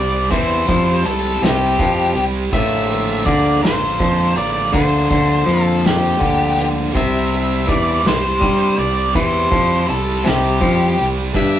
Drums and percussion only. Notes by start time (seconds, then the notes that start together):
0.32 kick, closed hi-hat
0.69 kick, closed hi-hat
1.06 closed hi-hat
1.43 snare, closed hi-hat
1.79 kick, closed hi-hat
2.16 closed hi-hat
2.53 kick, closed hi-hat
2.91 closed hi-hat
3.26 kick, closed hi-hat
3.63 snare, closed hi-hat
4.00 kick, closed hi-hat
4.38 closed hi-hat
4.74 kick, closed hi-hat
5.11 kick, closed hi-hat
5.49 closed hi-hat
5.85 snare, closed hi-hat
6.21 kick, closed hi-hat
6.59 closed hi-hat
6.95 kick, closed hi-hat
7.32 closed hi-hat
7.69 kick, closed hi-hat
8.05 snare, closed hi-hat
8.42 kick, closed hi-hat
8.79 closed hi-hat
9.15 kick, closed hi-hat
9.52 kick, closed hi-hat
9.89 closed hi-hat
10.25 snare, closed hi-hat
10.61 kick, closed hi-hat
10.98 closed hi-hat
11.35 kick, closed hi-hat